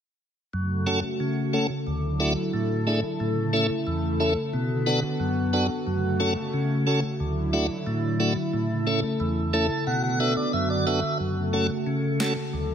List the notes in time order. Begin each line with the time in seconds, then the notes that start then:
0.53 F#2 C#3 A3 F#4 A4
0.86 A3 C#4 F#4 A4
1.20 C#3
1.53 A3 C#4 F#4 A4
1.87 D2 D3 F#3 E4
2.20 A3 D4 E4 F#4
2.54 A2
2.87 A3 D4 E4 G#4
3.20 A2 C#3 A3
3.53 A3 C#4 E4 A4
3.87 E2
4.20 A3 C#4 E4 A4
4.53 B2 D3 B3 F#4
4.86 B3 D4 F#4 A4
5.20 F#2
5.53 B3 D4 F#4 A4
5.87 F#2 C#3 A3
6.20 A3 C#4 F#4 A4
6.54 C#3
6.87 A3 C#4 F#4 A4
7.20 D2 D3 F#3 E4
7.53 A3 D4 E4 F#4
7.87 A2
8.20 A3 D4 E4 F#4
8.53 A2 C#3 A3 A4
8.87 A3 C#4 E4 A4
9.20 E2
9.53 A3 C#4 E4 A4 A5
9.87 B2 D3 B3 F#4 F#5
10.04 F#5
10.20 B3 D4 F#4 A4 E5
10.37 D5
10.53 F#2 E5
10.70 D5
10.87 B3 D4 F#4 A4 E5
11.20 F#2 C#3 A3 A4
11.53 A3 C#4 F#4 A4
11.87 C#3
12.20 A3 C#4 F#4 A4, snare
12.53 D2 D3 F#3 E4